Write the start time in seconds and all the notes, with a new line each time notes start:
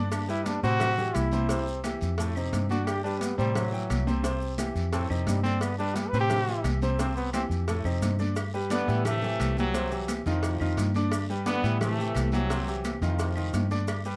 Already playing: G2 D3 D4 D5
0.12 D4, cowbell, high conga, long guiro, claves, maracas
0.28 G3 E4 G4 B4, maracas
0.46 D4, cowbell, high conga, short guiro, maracas
0.63 A2 C3 C4 F#4 C5, high conga, short guiro, maracas
0.80 cowbell, high conga, low conga, long guiro, claves, maracas
0.98 E3 E4 G4, high conga, low conga, maracas
1.15 C2 E4, cowbell, high conga, short guiro, claves, maracas
1.31 C3 C4 C5, high conga, short guiro, maracas
1.49 C3 C4 C5, cowbell, high conga, long guiro, maracas
1.67 high conga, maracas
1.84 E3 E4 G4, cowbell, high conga, short guiro, claves, maracas
2.01 F2, short guiro, maracas
2.18 A2 A3 A4, cowbell, high conga, long guiro, maracas
2.35 C3 C4 D#4, high conga, claves, maracas
2.52 G2, cowbell, high conga, short guiro, maracas
2.69 D3 D4 F#4 D5, high conga, short guiro, maracas
2.87 G4, cowbell, high conga, long guiro, claves, maracas
3.04 G3 D4 G4 B4, high conga, maracas
3.21 B3, cowbell, high conga, short guiro, maracas
3.38 A2 C3 G3 C4 C5, high conga, short guiro, maracas
3.55 F#3, cowbell, high conga, low conga, long guiro, claves, maracas
3.72 E3 E4 G5, high conga, maracas
3.90 C2, cowbell, high conga, short guiro, claves, maracas
4.07 C3 C4 C5, high conga, short guiro, maracas
4.23 C3 C4 C5, cowbell, high conga, long guiro, maracas
4.41 high conga, maracas
4.58 E3 E4 G4, cowbell, high conga, short guiro, claves, maracas
4.75 F2, high conga, short guiro, maracas
4.93 A2 A3 C4 A4, cowbell, high conga, long guiro, maracas
5.10 F2 C3 D#3 C4 D#4, high conga, claves, maracas
5.27 G2 G3, cowbell, high conga, short guiro, maracas
5.43 D3 C4 D4 D5, high conga, short guiro, maracas
5.61 B3, cowbell, high conga, long guiro, claves, maracas
5.78 G3 D4 G4 B4, high conga, maracas
5.96 G4, cowbell, high conga, short guiro, maracas
6.09 B4
6.13 A2 C3 C4 C5, short guiro, maracas
6.21 G4
6.30 cowbell, high conga, low conga, long guiro, claves, maracas
6.48 E3 E4 G4, high conga, maracas
6.64 C2, cowbell, high conga, short guiro, claves, maracas
6.82 C3 C4 C5, high conga, short guiro, maracas
6.99 C3 C4 C5, cowbell, high conga, long guiro, maracas
7.17 B3, high conga, maracas
7.33 E3 C4 E4 G4, cowbell, high conga, short guiro, claves, maracas
7.50 F2, high conga, short guiro, maracas
7.68 A2 A3 A4, cowbell, high conga, long guiro, maracas
7.85 F2 C3 C4 D#4, high conga, claves, maracas
8.02 G2, cowbell, high conga, short guiro, maracas
8.19 D3 D4 D5, high conga, short guiro, maracas
8.36 cowbell, high conga, long guiro, claves, maracas
8.53 G3 G4 B4, high conga, maracas
8.70 D3 G3 B3 D4 D5, cowbell, high conga, short guiro, maracas
8.88 A2 E3 E4 G4, short guiro, maracas
9.05 C3 E3 A3, cowbell, high conga, low conga, long guiro, claves, maracas
9.22 E3 E4 G4, high conga, low conga, maracas
9.40 C2, cowbell, high conga, short guiro, claves, maracas
9.57 C3 E3 F#3 E4 G4, high conga, short guiro, maracas
9.74 C3 C4 C5, cowbell, high conga, long guiro, maracas
9.91 E3 E4 G4, high conga, maracas
10.08 cowbell, high conga, short guiro, claves, maracas
10.26 F2 A2 C3 D#3 F3 D#4 F4, high conga, short guiro, maracas
10.43 cowbell, high conga, long guiro, maracas
10.60 F2 D#3 D#4 F4, high conga, claves, maracas
10.77 G2, cowbell, high conga, short guiro, maracas
10.94 D3 D4 D5, high conga, short guiro, maracas
11.12 cowbell, high conga, long guiro, claves, maracas
11.29 G3 G4 B4, high conga, maracas
11.46 D3 G3 B3 D4 D5, cowbell, high conga, short guiro, maracas
11.63 A2 E3 E4 G4, short guiro, maracas
11.81 C3 E3 A3, cowbell, high conga, low conga, long guiro, claves, maracas
11.99 E3 E4 G4, maracas
12.15 C2, cowbell, high conga, short guiro, claves, maracas
12.32 C3 E3 F#3 E4 G4, high conga, short guiro, maracas
12.50 C3 C4 C5, cowbell, high conga, long guiro, maracas
12.67 E3 E4 G4, maracas
12.84 cowbell, high conga, short guiro, claves, maracas
13.02 F2 A2 C3 D#3 F3 D#4 F4, high conga, short guiro, maracas
13.19 cowbell, high conga, long guiro, maracas
13.36 D#3 D#4 F4, high conga, claves, maracas
13.54 G2, cowbell, high conga, short guiro, maracas
13.71 D3 D4 D5, high conga, short guiro, maracas
13.88 cowbell, high conga, long guiro, claves, maracas
14.05 G3 G4 B4, high conga, maracas